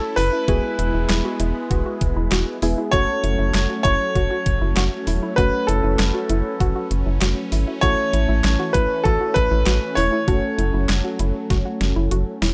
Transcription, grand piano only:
0, 0, Header, 1, 2, 480
1, 0, Start_track
1, 0, Key_signature, 3, "minor"
1, 0, Tempo, 612245
1, 378, Time_signature, 4, 2, 24, 8
1, 9830, End_track
2, 0, Start_track
2, 0, Title_t, "Grand piano"
2, 0, Program_c, 0, 0
2, 0, Note_on_c, 0, 69, 97
2, 127, Note_on_c, 0, 71, 109
2, 143, Note_off_c, 0, 69, 0
2, 2021, Note_off_c, 0, 71, 0
2, 2285, Note_on_c, 0, 73, 111
2, 2993, Note_off_c, 0, 73, 0
2, 3005, Note_on_c, 0, 73, 107
2, 4180, Note_off_c, 0, 73, 0
2, 4204, Note_on_c, 0, 71, 100
2, 4433, Note_off_c, 0, 71, 0
2, 4445, Note_on_c, 0, 69, 84
2, 5380, Note_off_c, 0, 69, 0
2, 6126, Note_on_c, 0, 73, 112
2, 6844, Note_on_c, 0, 71, 93
2, 6874, Note_off_c, 0, 73, 0
2, 7084, Note_on_c, 0, 69, 93
2, 7099, Note_off_c, 0, 71, 0
2, 7324, Note_on_c, 0, 71, 103
2, 7338, Note_off_c, 0, 69, 0
2, 7804, Note_on_c, 0, 73, 97
2, 7825, Note_off_c, 0, 71, 0
2, 8499, Note_off_c, 0, 73, 0
2, 9830, End_track
0, 0, End_of_file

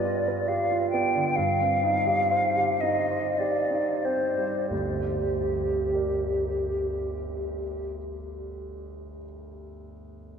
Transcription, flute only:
0, 0, Header, 1, 2, 480
1, 0, Start_track
1, 0, Key_signature, -2, "minor"
1, 0, Tempo, 882353
1, 744, Time_signature, 3, 2, 24, 8
1, 744, Tempo, 937500
1, 1224, Tempo, 1088929
1, 1704, Tempo, 1312910
1, 2184, Tempo, 1192843
1, 3624, Tempo, 1234568
1, 4442, End_track
2, 0, Start_track
2, 0, Title_t, "Flute"
2, 0, Program_c, 0, 73
2, 0, Note_on_c, 0, 74, 44
2, 262, Note_on_c, 0, 77, 51
2, 270, Note_off_c, 0, 74, 0
2, 489, Note_off_c, 0, 77, 0
2, 492, Note_on_c, 0, 79, 53
2, 740, Note_on_c, 0, 77, 57
2, 748, Note_off_c, 0, 79, 0
2, 1445, Note_on_c, 0, 75, 45
2, 1451, Note_off_c, 0, 77, 0
2, 1700, Note_on_c, 0, 74, 43
2, 1706, Note_off_c, 0, 75, 0
2, 1944, Note_on_c, 0, 72, 34
2, 1949, Note_off_c, 0, 74, 0
2, 2179, Note_off_c, 0, 72, 0
2, 2182, Note_on_c, 0, 67, 29
2, 3491, Note_off_c, 0, 67, 0
2, 4442, End_track
0, 0, End_of_file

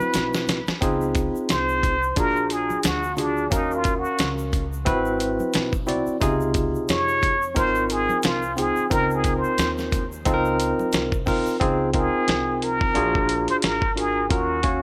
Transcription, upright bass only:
0, 0, Header, 1, 3, 480
1, 0, Start_track
1, 0, Key_signature, -5, "major"
1, 0, Tempo, 674157
1, 585, Time_signature, 4, 2, 24, 8
1, 10552, End_track
2, 0, Start_track
2, 0, Title_t, "Upright bass"
2, 0, Program_c, 0, 32
2, 103, Note_on_c, 0, 35, 96
2, 462, Note_off_c, 0, 35, 0
2, 582, Note_on_c, 0, 37, 97
2, 941, Note_off_c, 0, 37, 0
2, 1064, Note_on_c, 0, 36, 94
2, 1520, Note_off_c, 0, 36, 0
2, 1545, Note_on_c, 0, 34, 88
2, 1903, Note_off_c, 0, 34, 0
2, 2023, Note_on_c, 0, 38, 91
2, 2480, Note_off_c, 0, 38, 0
2, 2506, Note_on_c, 0, 39, 105
2, 2863, Note_off_c, 0, 39, 0
2, 2986, Note_on_c, 0, 37, 99
2, 3442, Note_off_c, 0, 37, 0
2, 3466, Note_on_c, 0, 32, 105
2, 3824, Note_off_c, 0, 32, 0
2, 3947, Note_on_c, 0, 35, 97
2, 4304, Note_off_c, 0, 35, 0
2, 4424, Note_on_c, 0, 37, 111
2, 4783, Note_off_c, 0, 37, 0
2, 4905, Note_on_c, 0, 41, 86
2, 5361, Note_off_c, 0, 41, 0
2, 5385, Note_on_c, 0, 32, 89
2, 5743, Note_off_c, 0, 32, 0
2, 5865, Note_on_c, 0, 36, 86
2, 6223, Note_off_c, 0, 36, 0
2, 6345, Note_on_c, 0, 37, 93
2, 6703, Note_off_c, 0, 37, 0
2, 6821, Note_on_c, 0, 39, 106
2, 7279, Note_off_c, 0, 39, 0
2, 7307, Note_on_c, 0, 37, 104
2, 7664, Note_off_c, 0, 37, 0
2, 7782, Note_on_c, 0, 36, 93
2, 8141, Note_off_c, 0, 36, 0
2, 8267, Note_on_c, 0, 37, 103
2, 8624, Note_off_c, 0, 37, 0
2, 8741, Note_on_c, 0, 36, 95
2, 9199, Note_off_c, 0, 36, 0
2, 9223, Note_on_c, 0, 34, 100
2, 9582, Note_off_c, 0, 34, 0
2, 9708, Note_on_c, 0, 32, 93
2, 10162, Note_off_c, 0, 32, 0
2, 10185, Note_on_c, 0, 39, 109
2, 10543, Note_off_c, 0, 39, 0
2, 10552, End_track
3, 0, Start_track
3, 0, Title_t, "Muted upright bass strokes"
3, 480, Note_on_c, 9, 29, 49
3, 551, Note_off_c, 9, 29, 0
3, 960, Note_on_c, 9, 29, 41
3, 1032, Note_off_c, 9, 29, 0
3, 1924, Note_on_c, 9, 29, 45
3, 1995, Note_off_c, 9, 29, 0
3, 2884, Note_on_c, 9, 29, 44
3, 2955, Note_off_c, 9, 29, 0
3, 3842, Note_on_c, 9, 29, 51
3, 3913, Note_off_c, 9, 29, 0
3, 4324, Note_on_c, 9, 29, 50
3, 4395, Note_off_c, 9, 29, 0
3, 4805, Note_on_c, 9, 29, 45
3, 4876, Note_off_c, 9, 29, 0
3, 5761, Note_on_c, 9, 29, 51
3, 5832, Note_off_c, 9, 29, 0
3, 6243, Note_on_c, 9, 29, 49
3, 6314, Note_off_c, 9, 29, 0
3, 6720, Note_on_c, 9, 29, 46
3, 6792, Note_off_c, 9, 29, 0
3, 7679, Note_on_c, 9, 29, 48
3, 7751, Note_off_c, 9, 29, 0
3, 8162, Note_on_c, 9, 29, 55
3, 8234, Note_off_c, 9, 29, 0
3, 8640, Note_on_c, 9, 29, 42
3, 8711, Note_off_c, 9, 29, 0
3, 9602, Note_on_c, 9, 29, 46
3, 9673, Note_off_c, 9, 29, 0
3, 10552, End_track
0, 0, End_of_file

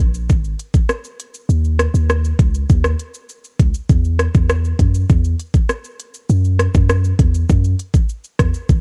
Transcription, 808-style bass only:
0, 0, Header, 1, 2, 480
1, 0, Start_track
1, 0, Tempo, 600000
1, 1195, Time_signature, 4, 2, 24, 8
1, 7045, End_track
2, 0, Start_track
2, 0, Title_t, "808-style bass"
2, 0, Program_c, 0, 38
2, 0, Note_on_c, 0, 34, 94
2, 237, Note_on_c, 0, 32, 119
2, 249, Note_off_c, 0, 34, 0
2, 440, Note_off_c, 0, 32, 0
2, 1193, Note_on_c, 0, 39, 106
2, 1500, Note_off_c, 0, 39, 0
2, 1554, Note_on_c, 0, 39, 100
2, 1861, Note_off_c, 0, 39, 0
2, 1913, Note_on_c, 0, 37, 93
2, 2118, Note_off_c, 0, 37, 0
2, 2158, Note_on_c, 0, 39, 111
2, 2361, Note_off_c, 0, 39, 0
2, 2876, Note_on_c, 0, 37, 95
2, 2978, Note_off_c, 0, 37, 0
2, 3116, Note_on_c, 0, 40, 109
2, 3422, Note_off_c, 0, 40, 0
2, 3478, Note_on_c, 0, 40, 93
2, 3783, Note_off_c, 0, 40, 0
2, 3833, Note_on_c, 0, 42, 89
2, 4038, Note_off_c, 0, 42, 0
2, 4077, Note_on_c, 0, 40, 105
2, 4281, Note_off_c, 0, 40, 0
2, 5036, Note_on_c, 0, 42, 104
2, 5341, Note_off_c, 0, 42, 0
2, 5396, Note_on_c, 0, 42, 98
2, 5702, Note_off_c, 0, 42, 0
2, 5752, Note_on_c, 0, 40, 91
2, 5957, Note_off_c, 0, 40, 0
2, 5997, Note_on_c, 0, 42, 109
2, 6200, Note_off_c, 0, 42, 0
2, 6715, Note_on_c, 0, 40, 93
2, 6817, Note_off_c, 0, 40, 0
2, 6954, Note_on_c, 0, 32, 102
2, 7045, Note_off_c, 0, 32, 0
2, 7045, End_track
0, 0, End_of_file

